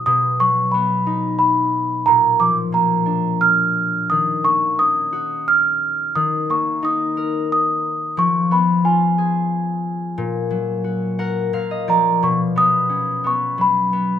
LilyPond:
<<
  \new Staff \with { instrumentName = "Celesta" } { \time 3/4 \key ees \minor \tempo 4 = 89 dis'''8 des'''8 b''4 b''4 | bes''8 d'''8 bes''4 f'''4 | ees'''8 des'''8 ees'''4 f'''4 | ees'''8 des'''8 ees'''4 ees'''4 |
des'''8 ces'''8 aes''2~ | aes''2 r8 bes''8 | cis'''8 ees'''4 cis'''8 b''4 | }
  \new Staff \with { instrumentName = "Harp" } { \time 3/4 \key ees \minor r2. | r2. | r2. | r2. |
r2. | r4. ges''8 f''16 ees''16 d''8 | r2. | }
  \new Staff \with { instrumentName = "Harp" } { \time 3/4 \key ees \minor b,8 fis8 b8 dis'4. | bes,8 f8 bes8 d'4. | ees8 bes8 des'8 ges'4. | ees8 bes8 ees'8 bes'4. |
f8 ces'8 f'8 aes'4. | bes,8 ges8 ges'8 bes'8 bes,8 f8 | b,8 b8 cis'8 b8 fis8 b8 | }
>>